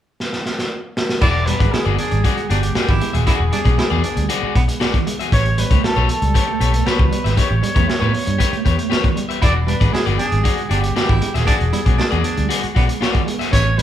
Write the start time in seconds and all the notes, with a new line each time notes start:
0.20 snare
0.33 snare
0.46 snare
0.59 snare
0.97 snare
1.09 snare
1.21 E1 E4 F#4 G#4 D5, kick, crash, muted conga, low conga
1.33 muted clean electric guitar stroke, muted conga
1.46 G3 D4 B4, muted clean electric guitar stroke, closed hi-hat, high conga
1.59 G#1 G#3 F#4 G#4 D5, kick, closed hi-hat
1.72 G#3 E4 G#4, muted clean electric guitar stroke, muted fingered electric bass stroke, snare
1.85 G1 F#4 G#4 D5, high conga, low conga
1.98 D4 G#4, muted clean electric guitar stroke, closed hi-hat, high conga
2.11 G#1 G3, muted clean electric guitar stroke, closed hi-hat
2.24 F#4 G#4 D5, kick, closed hi-hat
2.37 G#3, muted clean electric guitar stroke, closed hi-hat, muted conga
2.49 G1 D4 F#4 G4 G#4 D5, muted clean electric guitar stroke, closed hi-hat, high conga
2.63 G#3, muted clean electric guitar stroke, closed hi-hat
2.75 F#4 G4 G#4 D5, muted clean electric guitar stroke, snare, high conga
2.89 G#1 E3 E4, kick, closed hi-hat, muted conga
3.01 G#3, muted clean electric guitar stroke, closed hi-hat, high conga
3.13 D#1 F#4 G#4 E5, closed hi-hat
3.26 E4 F#4 G#4 D5, kick, closed hi-hat, low conga
3.38 E1, muted clean electric guitar stroke, muted conga
3.52 G3 D4, muted clean electric guitar stroke, closed hi-hat, high conga
3.65 B1 G#3 F#4 G#4 D5, kick, closed hi-hat
3.77 G#3 E4, muted clean electric guitar stroke, muted fingered electric bass stroke, snare, muted conga
3.90 E2 F#4 G#4 D5, high conga, low conga
4.03 D4, muted clean electric guitar stroke, closed hi-hat, high conga
4.17 D2 G3, muted clean electric guitar stroke, closed hi-hat
4.29 F#4 G#4 D5, closed hi-hat
4.42 G#3, muted fingered electric bass stroke, muted conga
4.55 B1 B3, muted clean electric guitar stroke, kick, closed hi-hat, high conga
4.68 G#3, muted clean electric guitar stroke, closed hi-hat
4.80 F#4 G#4 D5, muted clean electric guitar stroke, snare, muted conga, high conga
4.94 E3, kick, closed hi-hat
5.07 G#3, muted clean electric guitar stroke, closed hi-hat, high conga
5.19 F#4 G#4 E5, closed hi-hat
5.31 A1 G4 B4 C#5, kick, closed hi-hat, muted conga, low conga
5.43 muted clean electric guitar stroke, closed hi-hat, muted conga
5.58 G3 B4, muted clean electric guitar stroke, closed hi-hat, high conga
5.70 C#2 A3 G4 B4 C#5, kick, closed hi-hat
5.83 A3 A4, muted fingered electric bass stroke, muted clean electric guitar stroke, snare
5.96 B1 G4 B4 C#5, muted conga, high conga, low conga
6.09 A4, muted clean electric guitar stroke, closed hi-hat, high conga
6.22 C#2 G3, muted clean electric guitar stroke, closed hi-hat
6.34 G4 B4 C#5, kick, closed hi-hat, muted conga
6.47 A3, muted clean electric guitar stroke
6.60 B1 G4 B4 C#5, muted clean electric guitar stroke, closed hi-hat, high conga
6.73 A3, muted clean electric guitar stroke, closed hi-hat
6.86 G4 B4 C#5, muted clean electric guitar stroke, muted fingered electric bass stroke, snare, high conga
6.99 C#2 E3, kick, muted conga
7.11 G3, muted clean electric guitar stroke, closed hi-hat, high conga
7.24 G#1 G4 B4 E5, snare, closed hi-hat
7.37 G4 B4 C#5, kick, closed hi-hat, low conga
7.49 A1, muted clean electric guitar stroke, muted conga
7.62 G3, muted clean electric guitar stroke, closed hi-hat, high conga
7.75 E2 A3 G4 B4 C#5, kick, closed hi-hat
7.88 A3, muted clean electric guitar stroke, muted fingered electric bass stroke, snare
8.00 A2 G4 B4 C#5, muted conga, high conga, low conga
8.13 muted clean electric guitar stroke, open hi-hat, high conga
8.26 G2 G3, muted clean electric guitar stroke, closed hi-hat
8.38 G4 B4 C#5, kick, closed hi-hat, muted conga
8.52 A3, muted clean electric guitar stroke, muted fingered electric bass stroke, closed hi-hat, muted conga
8.65 E2 G4 B4 C#5, muted clean electric guitar stroke, kick, closed hi-hat, high conga
8.78 A3, muted clean electric guitar stroke, closed hi-hat
8.90 G4 B4 C#5, muted clean electric guitar stroke, snare, muted conga, high conga
9.03 E3, kick, closed hi-hat, muted conga
9.16 G3, muted clean electric guitar stroke, closed hi-hat, high conga
9.29 G4 B4 E5, closed hi-hat
9.41 E1 E4 F#4 G#4 D5, kick, closed hi-hat, muted conga, low conga
9.53 muted clean electric guitar stroke, muted conga
9.67 G3 D4 B4, muted clean electric guitar stroke, closed hi-hat, high conga
9.80 G#1 G#3 F#4 G#4 D5, kick, closed hi-hat
9.93 G#3 E4 G#4, muted clean electric guitar stroke, muted fingered electric bass stroke, snare, muted conga
10.06 G1 F#4 G#4 D5, closed hi-hat, muted conga, high conga, low conga
10.18 D4 G#4, muted clean electric guitar stroke, closed hi-hat, high conga
10.31 G#1 G3, muted clean electric guitar stroke, closed hi-hat
10.44 F#4 G#4 D5, kick, closed hi-hat, muted conga
10.57 G#3, muted clean electric guitar stroke, closed hi-hat, muted conga
10.69 G1 D4 F#4 G4 G#4 D5, muted clean electric guitar stroke, closed hi-hat, high conga
10.82 G#3, muted clean electric guitar stroke, closed hi-hat
10.96 F#4 G4 G#4 D5, muted clean electric guitar stroke, snare, muted conga, high conga
11.08 G#1 E3 E4, kick, muted conga
11.21 G#3, muted clean electric guitar stroke, closed hi-hat, high conga
11.34 D#1 F#4 G#4 E5, snare, closed hi-hat
11.47 D4 F#4 G#4 D5, kick, closed hi-hat, muted conga, low conga
11.60 E1, muted clean electric guitar stroke, closed hi-hat
11.72 G3 E4, muted clean electric guitar stroke, closed hi-hat, high conga
11.86 B1 G#3 F#4 G#4 D5, kick, closed hi-hat
11.98 G#3 D4, muted clean electric guitar stroke, snare, muted conga
12.11 E2 F#4 G#4 D5, closed hi-hat, muted conga, high conga, low conga
12.24 D4, muted clean electric guitar stroke, closed hi-hat, high conga
12.37 D2 G3, muted clean electric guitar stroke, closed hi-hat
12.49 F#4 G#4 D5, closed hi-hat
12.62 G#3, muted clean electric guitar stroke, muted fingered electric bass stroke, closed hi-hat, muted conga
12.75 B1 B3 F#4 G#4 D5, muted clean electric guitar stroke, kick, closed hi-hat, high conga
12.88 G#3, muted clean electric guitar stroke, closed hi-hat
13.01 F#4 G#4 D5, muted clean electric guitar stroke, snare, muted conga, high conga
13.14 E3, kick, closed hi-hat, muted conga
13.26 G#3, muted clean electric guitar stroke, closed hi-hat, high conga
13.39 F#4 G#4 E5, snare, closed hi-hat
13.52 A1 C#4 G4 B4 C#5, kick, closed hi-hat, muted conga, low conga
13.64 muted clean electric guitar stroke, muted conga
13.78 G3 B4, muted clean electric guitar stroke, closed hi-hat, high conga